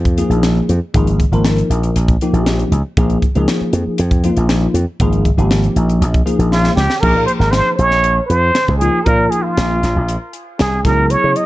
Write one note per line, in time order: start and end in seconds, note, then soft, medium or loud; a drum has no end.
0.00 0.21 F2 medium
0.05 kick medium
0.05 closed hi-hat soft
0.18 0.71 F3 medium
0.18 0.71 A#3 medium
0.18 0.71 D#4 medium
0.18 0.71 G#4 medium
0.18 closed hi-hat medium
0.29 0.59 A#1 medium
0.29 closed hi-hat soft
0.43 snare loud
0.43 closed hi-hat medium
0.69 0.79 F2 medium
0.69 closed hi-hat medium
0.94 1.24 G#1 medium
0.94 1.20 F3 medium
0.94 1.21 A#3 medium
0.94 1.21 D#4 medium
0.94 1.21 G#4 medium
0.94 kick loud
0.94 closed hi-hat medium
1.07 closed hi-hat soft
1.20 kick medium
1.20 closed hi-hat soft
1.32 1.61 G#1 medium
1.32 1.94 F3 medium
1.32 1.94 A#3 medium
1.32 1.94 D#4 medium
1.32 1.95 A#4 medium
1.32 closed hi-hat soft
1.45 snare loud
1.45 closed hi-hat medium
1.58 closed hi-hat soft
1.70 1.90 A#1 medium
1.70 closed hi-hat medium
1.83 closed hi-hat soft
1.96 2.15 A#1 medium
1.96 closed hi-hat medium
2.08 kick medium
2.08 closed hi-hat soft
2.21 2.75 F3 medium
2.21 2.75 A#3 medium
2.21 2.75 D#4 medium
2.21 2.75 G4 medium
2.21 closed hi-hat medium
2.33 2.63 A#1 medium
2.33 closed hi-hat soft
2.46 snare medium
2.46 closed hi-hat medium
2.59 closed hi-hat soft
2.71 2.81 C#2 medium
2.71 closed hi-hat medium
2.97 3.17 A#1 loud
2.97 3.24 F3 medium
2.97 3.24 A#3 medium
2.97 3.24 D#4 medium
2.97 3.24 G#4 medium
2.97 kick loud
2.97 closed hi-hat medium
3.10 closed hi-hat soft
3.22 kick medium
3.22 closed hi-hat medium
3.35 3.45 C#2 medium
3.35 3.97 F3 medium
3.35 3.98 A#3 medium
3.35 3.98 D#4 medium
3.35 3.98 G#4 medium
3.35 closed hi-hat soft
3.48 snare loud
3.48 closed hi-hat medium
3.61 muted slap bass stroke soft
3.73 3.83 F2 medium
3.73 closed hi-hat medium
3.87 muted slap bass stroke soft
3.98 4.29 F2 medium
3.98 closed hi-hat medium
4.11 kick medium
4.11 closed hi-hat soft
4.24 4.77 F3 medium
4.24 4.78 A#3 medium
4.24 4.77 D#4 medium
4.24 4.78 F4 medium
4.24 closed hi-hat medium
4.37 4.66 A#1 medium
4.37 closed hi-hat soft
4.49 snare medium
4.49 closed hi-hat medium
4.74 4.84 F2 medium
4.74 closed hi-hat medium
5.00 5.30 G#1 medium
5.00 5.27 F3 medium
5.00 5.27 A#3 medium
5.00 5.27 D#4 medium
5.00 5.27 G#4 medium
5.00 kick loud
5.00 closed hi-hat medium
5.13 closed hi-hat soft
5.25 kick medium
5.25 closed hi-hat medium
5.38 5.67 G#1 medium
5.38 6.00 F3 medium
5.38 6.00 A#3 medium
5.38 6.00 D#4 medium
5.38 6.00 G4 medium
5.38 closed hi-hat soft
5.51 snare loud
5.51 closed hi-hat medium
5.64 closed hi-hat soft
5.76 5.96 A#1 medium
5.76 closed hi-hat medium
5.89 closed hi-hat soft
6.01 6.21 A#1 medium
6.01 closed hi-hat medium
6.14 kick medium
6.14 closed hi-hat soft
6.25 6.80 F3 medium
6.25 6.80 A#3 medium
6.25 6.80 D#4 medium
6.25 6.80 G#4 medium
6.25 closed hi-hat soft
6.39 6.69 A#1 medium
6.39 closed hi-hat soft
6.52 6.75 F4 medium
6.52 snare medium
6.64 snare medium
6.75 6.87 C#2 medium
6.75 7.02 G4 medium
6.75 snare medium
6.90 snare medium
7.01 7.13 A#1 medium
7.01 7.74 F3 medium
7.01 7.74 A#3 medium
7.01 7.74 D#4 medium
7.01 7.74 G#4 medium
7.01 7.25 A#4 medium
7.01 kick medium
7.01 crash medium
7.15 7.25 A#2 medium
7.26 7.32 C5 medium
7.26 closed hi-hat medium
7.39 7.60 G#1 medium
7.39 7.53 A#4 medium
7.39 snare soft
7.51 7.75 C5 medium
7.51 snare medium
7.51 closed hi-hat medium
7.76 8.19 A#1 medium
7.76 8.25 C#5 loud
7.76 closed hi-hat soft
7.91 snare soft
8.04 closed hi-hat medium
8.26 8.50 F2 medium
8.26 8.75 C5 medium
8.30 closed hi-hat medium
8.55 snare medium
8.55 closed hi-hat medium
8.68 8.88 C#2 medium
8.68 kick medium
8.78 8.99 F3 medium
8.78 8.99 A#3 medium
8.78 8.99 D#4 medium
8.78 8.99 F4 medium
8.78 9.06 G#4 medium
8.78 closed hi-hat medium
9.04 9.26 A#2 medium
9.04 9.78 F3 medium
9.04 9.78 A#3 medium
9.04 9.78 D#4 medium
9.04 9.78 F4 medium
9.04 9.32 A#4 medium
9.04 kick medium
9.04 closed hi-hat medium
9.31 9.44 G#4 medium
9.31 closed hi-hat medium
9.42 10.20 F4 medium
9.57 9.77 A#1 medium
9.57 snare medium
9.57 closed hi-hat medium
9.83 9.93 A#1 medium
9.83 snare soft
9.83 closed hi-hat soft
9.96 10.16 A#1 medium
10.08 closed hi-hat medium
10.33 closed hi-hat soft
10.59 10.80 C2 medium
10.59 10.86 G#4 medium
10.59 snare medium
10.59 closed hi-hat medium
10.85 11.14 C#2 medium
10.85 11.46 F#3 medium
10.85 11.46 B3 medium
10.85 11.46 E4 medium
10.85 11.46 G#4 medium
10.85 11.12 A#4 medium
10.85 kick loud
10.85 snare soft
10.85 closed hi-hat medium
11.10 11.38 C#5 medium
11.10 closed hi-hat medium
11.24 11.33 C#3 medium
11.36 11.46 D#5 medium
11.36 closed hi-hat soft